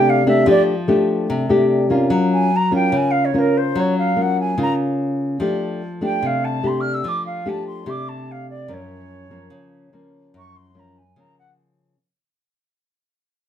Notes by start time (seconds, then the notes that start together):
Already playing: C3 A3 D4 G4 G5
0.09 F5
0.27 A3 D4 G4 E5
0.46 F3 A3 D4 G4 D5
0.88 A3 D4 G4
1.30 C3
1.49 A3 D4 G4
1.90 A#3 C#4 F4
2.10 F#3
2.33 G#5
2.56 A#5
2.71 A#3 C#4 F4 G5
2.92 C#3
2.96 G#5
3.10 F5
3.24 C#5
3.34 A#3 C#4 F4
3.38 A#4
3.57 C5
3.75 F#3 C#5
3.98 F5
4.16 A#3 C#4 F4
4.21 F#5
4.40 G#5
4.57 C#3 A#3 C#4 F4
4.62 A#5
5.40 F3 A3 D4 G4
6.01 A3 D4 G4 G5
6.22 C3 F5
6.44 A5
6.63 A3 D4 G4 C6
6.80 F6
6.93 E6
7.04 F3 D6
7.26 F5
7.46 A3 D4 G4 A5
7.66 C6
7.86 C3 A3 D4 G4 D6
8.08 A5
8.31 F5
8.50 D5
8.68 F#2 F3 A#3 C#4
8.73 C#5
9.30 F3 A#3 C#4
9.50 C#3
9.93 F3 A#3 C#4
10.34 F#2 C#6
10.56 C6
10.74 F3 A#3 C#4
10.79 A#5
10.98 G#5
11.16 C#3 F3 A#3 C#4 A#5
11.38 F#5